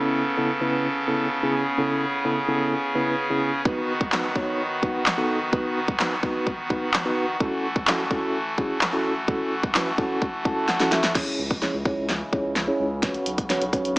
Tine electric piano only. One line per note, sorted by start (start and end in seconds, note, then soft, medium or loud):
0.00 0.23 C#3 medium
0.00 0.23 B3 medium
0.00 0.23 C#4 medium
0.00 0.23 E4 medium
0.00 0.23 A4 medium
0.37 0.50 C#3 medium
0.37 0.50 B3 medium
0.37 0.50 C#4 medium
0.37 0.50 E4 medium
0.37 0.50 A4 medium
0.61 0.86 C#3 medium
0.61 0.87 B3 medium
0.61 0.87 C#4 medium
0.61 0.87 E4 medium
0.61 0.87 B4 medium
1.07 1.27 C#3 medium
1.07 1.27 B3 medium
1.07 1.27 C#4 medium
1.07 1.27 E4 medium
1.07 1.27 A4 medium
1.43 1.62 C#3 medium
1.43 1.62 B3 medium
1.43 1.62 C#4 medium
1.43 1.62 E4 medium
1.43 1.62 G#4 medium
1.78 2.03 C#3 medium
1.78 2.04 B3 medium
1.78 2.04 C#4 medium
1.78 2.04 E4 medium
1.78 2.04 A4 medium
2.24 2.37 C#3 medium
2.24 2.38 B3 medium
2.24 2.38 C#4 medium
2.24 2.38 E4 medium
2.24 2.38 A4 medium
2.48 2.74 C#3 medium
2.48 2.74 B3 medium
2.48 2.74 C#4 medium
2.48 2.74 E4 medium
2.48 2.74 A4 medium
2.95 3.14 C#3 medium
2.95 3.14 B3 medium
2.95 3.14 C#4 medium
2.95 3.14 E4 medium
2.95 3.14 B4 medium
3.30 3.49 C#3 medium
3.30 3.49 B3 medium
3.30 3.49 C#4 medium
3.30 3.50 E4 medium
3.30 3.50 G#4 medium
3.65 3.91 B3 medium
3.65 3.91 D#4 medium
3.65 3.91 F#4 medium
3.65 3.91 B4 medium
4.12 4.25 B3 medium
4.12 4.25 D#4 medium
4.12 4.25 F#4 medium
4.12 4.25 B4 medium
4.35 4.61 B3 medium
4.35 4.61 D#4 medium
4.35 4.62 F#4 medium
4.35 4.62 C#5 medium
4.82 5.02 B3 medium
4.82 5.02 D#4 medium
4.82 5.02 F#4 medium
4.82 5.02 B4 medium
5.17 5.37 B3 medium
5.17 5.37 D#4 medium
5.17 5.37 F#4 medium
5.17 5.37 A4 medium
5.52 5.78 B3 medium
5.52 5.79 D#4 medium
5.52 5.79 F#4 medium
5.52 5.79 B4 medium
5.99 6.13 B3 medium
5.99 6.13 D#4 medium
5.99 6.13 F#4 medium
5.99 6.13 B4 medium
6.23 6.49 B3 medium
6.23 6.49 D#4 medium
6.23 6.49 F#4 medium
6.23 6.49 B4 medium
6.70 6.89 B3 medium
6.70 6.89 D#4 medium
6.70 6.89 F#4 medium
6.70 6.89 B4 medium
7.05 7.24 B3 medium
7.05 7.25 D#4 medium
7.05 7.25 F#4 medium
7.05 7.25 B4 medium
7.40 7.66 C#4 medium
7.40 7.66 E4 medium
7.40 7.66 F#4 medium
7.40 7.66 A4 medium
7.87 8.00 C#4 medium
7.87 8.00 E4 medium
7.87 8.00 F#4 medium
7.87 8.00 A4 medium
8.11 8.36 C#4 medium
8.11 8.37 E4 medium
8.11 8.37 F#4 medium
8.11 8.37 A4 medium
8.58 8.77 C#4 medium
8.58 8.77 E4 medium
8.58 8.77 F#4 medium
8.58 8.77 G#4 medium
8.93 9.12 C#4 medium
8.93 9.12 E4 medium
8.93 9.12 F#4 medium
8.93 9.12 A4 medium
9.28 9.54 C#4 medium
9.28 9.54 E4 medium
9.28 9.54 F#4 medium
9.28 9.54 A4 medium
9.75 9.88 C#4 medium
9.75 9.88 E4 medium
9.75 9.88 F#4 medium
9.75 9.88 B4 medium
9.98 10.24 C#4 medium
9.98 10.24 E4 medium
9.98 10.24 F#4 medium
9.98 10.24 A4 medium
10.45 10.64 C#4 medium
10.45 10.65 E4 medium
10.45 10.65 F#4 medium
10.45 10.65 A4 medium
10.45 10.67 A5 medium
10.69 10.90 F#5 medium
10.80 10.99 C#4 medium
10.80 10.99 E4 medium
10.80 11.00 F#4 medium
10.80 11.00 A4 medium
10.92 11.14 E5 medium
11.15 11.41 C#4 medium
11.15 11.41 E4 medium
11.15 11.41 G#4 medium
11.15 11.41 C#5 medium
11.61 11.75 C#4 medium
11.61 11.75 E4 medium
11.61 11.75 G#4 medium
11.61 11.75 C#5 medium
11.85 12.11 C#4 medium
11.85 12.11 E4 medium
11.85 12.11 G#4 medium
11.85 12.11 C#5 medium
12.32 12.52 C#4 medium
12.32 12.52 E4 medium
12.32 12.52 G#4 medium
12.32 12.52 C#5 medium
12.67 12.87 C#4 medium
12.67 12.87 E4 medium
12.67 12.87 G#4 medium
12.67 12.87 C#5 medium
13.02 13.28 C#4 medium
13.02 13.28 F#4 medium
13.02 13.29 B4 medium
13.02 13.29 C#5 medium
13.49 13.62 C#4 medium
13.49 13.62 F#4 medium
13.49 13.63 B4 medium
13.49 13.63 C#5 loud
13.73 13.98 C#4 medium
13.73 13.98 F#4 medium
13.73 13.98 B4 medium
13.73 13.98 C#5 medium